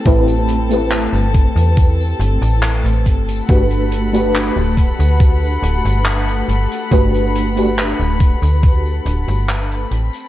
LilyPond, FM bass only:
\new Staff \with { instrumentName = "FM bass" } { \clef bass \time 4/4 \key g \major \tempo 4 = 70 a,,4~ a,,16 g,,8 e,8. g,,16 a,,8 a,,16 g,,8 | g,,4~ g,,16 d,,8 d,8. d,,16 g,,8. g,,16 r16 | g,,4~ g,,16 d,,8 d,8. d,,16 g,,8. a,,16 r16 | }